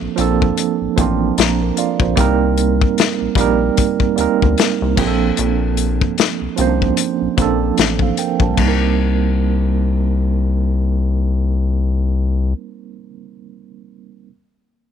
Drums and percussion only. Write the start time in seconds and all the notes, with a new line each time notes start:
0.18 closed hi-hat
0.42 kick
0.57 closed hi-hat
0.98 kick, closed hi-hat
1.38 snare, closed hi-hat
1.77 closed hi-hat
2.00 kick
2.17 kick, closed hi-hat
2.57 closed hi-hat
2.81 kick
2.98 snare, closed hi-hat
3.35 kick, closed hi-hat
3.77 kick, closed hi-hat
4.00 kick
4.18 closed hi-hat
4.42 kick
4.58 snare, closed hi-hat
4.97 kick, crash
5.37 closed hi-hat
5.77 closed hi-hat
6.01 kick
6.18 snare, closed hi-hat
6.57 closed hi-hat
6.82 kick
6.97 closed hi-hat
7.38 kick, closed hi-hat
7.77 snare, closed hi-hat
7.99 kick
8.17 closed hi-hat
8.40 kick
8.57 kick, crash